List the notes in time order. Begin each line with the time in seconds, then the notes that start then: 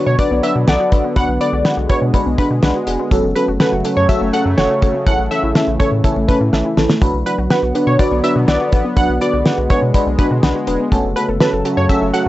Already playing: D3 F#3 B3
0.06 B2 B3 C#5
0.19 D4 F#4 B4 D5, kick, closed hi-hat
0.31 B1 B3
0.43 D4 F#4 B4 E5, closed hi-hat
0.55 B2 F#4
0.67 B1 D4 F#4 A4 D5 F#5, snare, closed hi-hat
0.80 F#4
0.92 A1 D4 F#4 B4, kick, closed hi-hat
1.04 B3
1.16 B1 F#3 G#3 D4 F#4 B4 F#5, kick, closed hi-hat
1.28 B1
1.41 D4 F#4 B4 D5, closed hi-hat
1.53 B1 F#4
1.65 D4 F#4 B4 F#5, snare, closed hi-hat
1.77 B1 F#4
1.89 D4 F#4 B4 C#5, kick, closed hi-hat
2.02 B2 B3
2.14 D4 F#4 B4, kick, closed hi-hat
2.26 B1 B3
2.38 D4 F#4 B4, kick, closed hi-hat
2.50 B2 F#4
2.63 B1 D4 F#4 B4 F#5, snare, closed hi-hat
2.75 F#4
2.87 E1 D4 F#4 G#4, closed hi-hat
3.00 B3
3.11 F#1 C#3 F#3 A3 C#4 F#4 A4, kick, closed hi-hat
3.24 F#1
3.35 C#4 F#4 A4 B4, closed hi-hat
3.48 F#1 F#4
3.60 C#4 F#4 A4 B4 F#5, snare, closed hi-hat
3.72 F#1 F#4
3.85 C#4 F#4 A4, closed hi-hat
3.97 F#2 A3 C#5
4.09 C#4 F#4 A4 E5, kick, closed hi-hat
4.21 F#1 A3
4.33 C#4 F#4 A4 F#5, closed hi-hat
4.45 F#2 F#4
4.58 F#1 C#4 F#4 A4 C#5 F#5, snare, closed hi-hat
4.70 F#4
4.82 G#1 C#4 F#4 A4, kick, closed hi-hat
4.94 A3
5.06 A1 E3 C#4 E4 A4 F#5, kick, closed hi-hat
5.19 A1
5.31 C#4 E4 A4 E5, closed hi-hat
5.43 A1 E4
5.55 C#4 E4 A4 E5, snare, closed hi-hat
5.67 A1 E4
5.80 C#4 E4 A4 C#5, kick, closed hi-hat
5.92 A2 A3
6.04 C#4 E4 A4, kick, closed hi-hat
6.16 A1 A3
6.28 C#4 E4 A4 B4, kick, closed hi-hat
6.41 A2 E4
6.53 A1 C#4 E4 A4 E5, snare
6.65 E4
6.77 A1 C#4 E4 A4, snare
6.90 A3, snare
7.02 B1 D3 F#3 B3 D4 F#4 B4, kick, closed hi-hat
7.14 B1
7.26 D4 F#4 B4, closed hi-hat
7.38 B1 F#4
7.50 D4 F#4 B4 F#5, snare, closed hi-hat
7.63 B1 F#4
7.75 D4 F#4 B4, closed hi-hat
7.87 B2 B3 C#5
7.99 D4 F#4 B4 D5, kick, closed hi-hat
8.11 B1 B3
8.24 D4 F#4 B4 E5, closed hi-hat
8.36 B2 F#4
8.48 B1 D4 F#4 B4 D5 F#5, snare, closed hi-hat
8.60 F#4
8.72 A1 D4 F#4 B4, kick, closed hi-hat
8.85 B3
8.96 B1 F#3 G#3 D4 F#4 B4 F#5, kick, closed hi-hat
9.09 B1
9.21 D4 F#4 B4 D5, closed hi-hat
9.33 B1 F#4
9.45 D4 F#4 B4 F#5, snare, closed hi-hat
9.58 B1 F#4
9.70 D4 F#4 B4 C#5, kick, closed hi-hat
9.82 B2 B3
9.94 D4 F#4 B4, kick, closed hi-hat
10.06 B1 B3
10.19 D4 F#4 B4, kick, closed hi-hat
10.31 B2 F#4
10.43 B1 D4 F#4 B4 F#5, snare, closed hi-hat
10.55 F#4
10.67 E1 D4 F#4 B4, closed hi-hat
10.80 B3
10.92 F#1 C#3 F#3 A3 C#4 F#4 A4, kick, closed hi-hat
11.04 F#1
11.16 C#4 F#4 A4 B4, closed hi-hat
11.28 F#1 A4
11.40 C#4 F#4 A4 B4 A5, snare, closed hi-hat
11.53 F#1 A4
11.65 C#4 F#4 A4, closed hi-hat
11.77 F#2 C#4 C#5
11.89 C#4 F#4 A4 E5, kick, closed hi-hat
12.02 F#1 C#4
12.14 C#4 F#4 A4 F#5, closed hi-hat